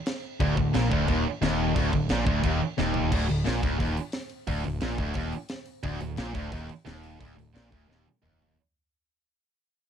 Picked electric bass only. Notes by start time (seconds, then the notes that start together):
0.40 D1
0.57 D1
0.74 A#1
0.92 D1
1.08 D#1
1.42 D#1
1.76 D1
1.93 D1
2.10 A#1
2.26 D1
2.44 D#1
2.79 D#1
3.12 D1
3.30 D1
3.47 A#1
3.63 D1
3.81 D#1
4.48 D1
4.66 D1
4.82 A#1
4.99 D1
5.15 D#1
5.83 D1
6.01 D1
6.18 A#1
6.35 D1
6.52 D#1
6.87 D#1
7.21 D1
7.38 D1
7.55 A#1
7.72 D1
7.89 D#1
8.23 D#1